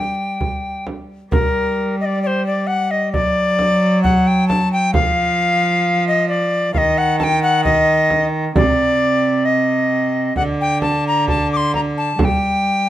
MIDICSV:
0, 0, Header, 1, 4, 480
1, 0, Start_track
1, 0, Tempo, 909091
1, 693, Time_signature, 4, 2, 24, 8
1, 6806, End_track
2, 0, Start_track
2, 0, Title_t, "Recorder"
2, 0, Program_c, 0, 74
2, 0, Note_on_c, 0, 79, 94
2, 449, Note_off_c, 0, 79, 0
2, 693, Note_on_c, 0, 70, 95
2, 1033, Note_off_c, 0, 70, 0
2, 1060, Note_on_c, 0, 75, 76
2, 1083, Note_on_c, 0, 74, 83
2, 1089, Note_off_c, 0, 75, 0
2, 1171, Note_off_c, 0, 74, 0
2, 1174, Note_on_c, 0, 74, 90
2, 1197, Note_on_c, 0, 72, 98
2, 1202, Note_off_c, 0, 74, 0
2, 1292, Note_off_c, 0, 72, 0
2, 1301, Note_on_c, 0, 74, 81
2, 1409, Note_on_c, 0, 78, 94
2, 1417, Note_off_c, 0, 74, 0
2, 1535, Note_on_c, 0, 75, 89
2, 1543, Note_off_c, 0, 78, 0
2, 1645, Note_off_c, 0, 75, 0
2, 1648, Note_on_c, 0, 74, 112
2, 2121, Note_off_c, 0, 74, 0
2, 2129, Note_on_c, 0, 78, 87
2, 2255, Note_on_c, 0, 79, 94
2, 2263, Note_off_c, 0, 78, 0
2, 2361, Note_off_c, 0, 79, 0
2, 2364, Note_on_c, 0, 81, 99
2, 2485, Note_off_c, 0, 81, 0
2, 2496, Note_on_c, 0, 79, 97
2, 2604, Note_off_c, 0, 79, 0
2, 2607, Note_on_c, 0, 77, 115
2, 3194, Note_off_c, 0, 77, 0
2, 3208, Note_on_c, 0, 75, 96
2, 3315, Note_off_c, 0, 75, 0
2, 3319, Note_on_c, 0, 74, 94
2, 3554, Note_off_c, 0, 74, 0
2, 3558, Note_on_c, 0, 77, 105
2, 3578, Note_on_c, 0, 75, 114
2, 3583, Note_off_c, 0, 77, 0
2, 3684, Note_on_c, 0, 78, 113
2, 3692, Note_off_c, 0, 75, 0
2, 3794, Note_off_c, 0, 78, 0
2, 3797, Note_on_c, 0, 81, 101
2, 3820, Note_on_c, 0, 79, 110
2, 3826, Note_off_c, 0, 81, 0
2, 3918, Note_off_c, 0, 79, 0
2, 3921, Note_on_c, 0, 78, 103
2, 4031, Note_off_c, 0, 78, 0
2, 4034, Note_on_c, 0, 75, 111
2, 4362, Note_off_c, 0, 75, 0
2, 4517, Note_on_c, 0, 74, 127
2, 4990, Note_on_c, 0, 75, 93
2, 4998, Note_off_c, 0, 74, 0
2, 5469, Note_off_c, 0, 75, 0
2, 5472, Note_on_c, 0, 78, 117
2, 5503, Note_off_c, 0, 78, 0
2, 5602, Note_on_c, 0, 79, 103
2, 5709, Note_off_c, 0, 79, 0
2, 5712, Note_on_c, 0, 81, 88
2, 5832, Note_off_c, 0, 81, 0
2, 5846, Note_on_c, 0, 82, 85
2, 5955, Note_off_c, 0, 82, 0
2, 5958, Note_on_c, 0, 81, 87
2, 6076, Note_off_c, 0, 81, 0
2, 6083, Note_on_c, 0, 86, 81
2, 6107, Note_on_c, 0, 84, 88
2, 6112, Note_off_c, 0, 86, 0
2, 6199, Note_off_c, 0, 84, 0
2, 6201, Note_on_c, 0, 82, 89
2, 6233, Note_off_c, 0, 82, 0
2, 6323, Note_on_c, 0, 81, 81
2, 6446, Note_off_c, 0, 81, 0
2, 6446, Note_on_c, 0, 81, 85
2, 6466, Note_on_c, 0, 79, 92
2, 6471, Note_off_c, 0, 81, 0
2, 6806, Note_off_c, 0, 79, 0
2, 6806, End_track
3, 0, Start_track
3, 0, Title_t, "Cello"
3, 0, Program_c, 1, 42
3, 0, Note_on_c, 1, 55, 60
3, 590, Note_off_c, 1, 55, 0
3, 694, Note_on_c, 1, 55, 68
3, 1656, Note_on_c, 1, 54, 76
3, 1664, Note_off_c, 1, 55, 0
3, 2610, Note_on_c, 1, 53, 86
3, 2618, Note_off_c, 1, 54, 0
3, 3560, Note_off_c, 1, 53, 0
3, 3563, Note_on_c, 1, 51, 88
3, 4499, Note_off_c, 1, 51, 0
3, 4522, Note_on_c, 1, 48, 81
3, 5457, Note_off_c, 1, 48, 0
3, 5481, Note_on_c, 1, 50, 88
3, 6424, Note_off_c, 1, 50, 0
3, 6440, Note_on_c, 1, 55, 62
3, 6806, Note_off_c, 1, 55, 0
3, 6806, End_track
4, 0, Start_track
4, 0, Title_t, "Frame drum"
4, 214, Note_on_c, 9, 64, 50
4, 267, Note_off_c, 9, 64, 0
4, 458, Note_on_c, 9, 64, 44
4, 510, Note_off_c, 9, 64, 0
4, 697, Note_on_c, 9, 64, 80
4, 750, Note_off_c, 9, 64, 0
4, 1657, Note_on_c, 9, 64, 54
4, 1710, Note_off_c, 9, 64, 0
4, 1895, Note_on_c, 9, 64, 49
4, 1947, Note_off_c, 9, 64, 0
4, 2136, Note_on_c, 9, 64, 54
4, 2189, Note_off_c, 9, 64, 0
4, 2375, Note_on_c, 9, 64, 55
4, 2428, Note_off_c, 9, 64, 0
4, 2608, Note_on_c, 9, 64, 83
4, 2660, Note_off_c, 9, 64, 0
4, 3561, Note_on_c, 9, 64, 54
4, 3614, Note_off_c, 9, 64, 0
4, 3801, Note_on_c, 9, 64, 54
4, 3854, Note_off_c, 9, 64, 0
4, 4040, Note_on_c, 9, 64, 56
4, 4093, Note_off_c, 9, 64, 0
4, 4278, Note_on_c, 9, 64, 50
4, 4331, Note_off_c, 9, 64, 0
4, 4518, Note_on_c, 9, 64, 83
4, 4571, Note_off_c, 9, 64, 0
4, 5469, Note_on_c, 9, 64, 50
4, 5522, Note_off_c, 9, 64, 0
4, 5713, Note_on_c, 9, 64, 52
4, 5766, Note_off_c, 9, 64, 0
4, 5955, Note_on_c, 9, 64, 51
4, 6007, Note_off_c, 9, 64, 0
4, 6198, Note_on_c, 9, 64, 46
4, 6251, Note_off_c, 9, 64, 0
4, 6436, Note_on_c, 9, 64, 83
4, 6489, Note_off_c, 9, 64, 0
4, 6806, End_track
0, 0, End_of_file